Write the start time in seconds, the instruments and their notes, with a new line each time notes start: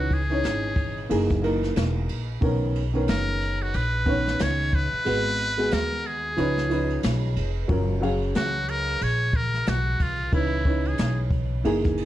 Already playing: upright bass C#2, upright piano E3 C#4 D#4 B4, muted trumpet F#4
0.11 muted trumpet G#4, kick, ride
0.29 upright piano E3 C#4 D#4 C#5, ride
0.44 upright bass G#1, snare, hi-hat pedal, ride
0.76 kick, ride
0.97 ride
1.09 upright bass F#1, upright piano E3 A#3 D#4 G#4, ride
1.30 kick, snare
1.42 upright piano E3 A#3 D#4 A#4, ride
1.63 snare, ride
1.76 upright bass E1, snare, hi-hat pedal, ride
2.09 upright bass A#1, ride
2.41 upright bass B1, upright piano D#3 B3 C#4 A#4, kick, ride
2.75 ride
2.94 upright piano D#3 B3 C#4 A#4, ride
3.08 upright bass F#1, muted trumpet A#4, snare, hi-hat pedal, ride
3.41 ride
3.61 muted trumpet F#4, ride
3.74 upright bass A#1, muted trumpet B4, ride
4.06 upright piano D#3 B3 C#4 C#5, kick, ride
4.26 snare, ride
4.39 upright bass C#2, muted trumpet C#5, snare, hi-hat pedal, ride
4.73 muted trumpet B4, kick, ride
4.92 muted upright bass stroke, ride
5.05 upright bass G#1, upright piano G#3 B3 F#4 B4, ride
5.39 ride
5.57 upright piano G#3 B3 F#4 G#4, ride
5.71 upright bass D#2, muted trumpet A#4, snare, hi-hat pedal, ride
6.05 muted trumpet G#4, ride
6.37 upright bass C#2, upright piano F3 C#4 D#4 B4, ride
6.58 snare
6.69 upright piano F3 C#4 D#4 B4, ride
6.90 ride
7.03 upright bass B1, snare, hi-hat pedal, ride
7.36 upright bass F1, ride
7.68 upright bass F#1, upright piano F#3 C#4 F4 A#4, kick, ride
8.01 upright piano F#3 C#4 G#4 F5, ride
8.22 ride
8.35 upright bass C#2, muted trumpet F#4, snare, hi-hat pedal, ride
8.68 muted trumpet A#4, ride
8.88 ride
9.01 upright bass A#1, muted trumpet C#5, ride
9.33 muted trumpet A#4, kick, ride
9.54 snare
9.66 upright bass B1, muted trumpet F#4, snare, hi-hat pedal, ride
10.00 upright bass C2, muted trumpet F4, kick, ride
10.32 upright bass C#2, upright piano E3 C#4 D#4 B4, muted trumpet E4, kick, ride
10.65 upright piano E3 C#4 D#4 B4, kick, ride
10.85 muted trumpet G#4, ride
10.98 upright bass B1, snare, hi-hat pedal, ride
11.31 kick, ride
11.64 upright bass F#1, upright piano E3 A#3 D#4 G#4, ride
11.84 kick, snare
11.97 ride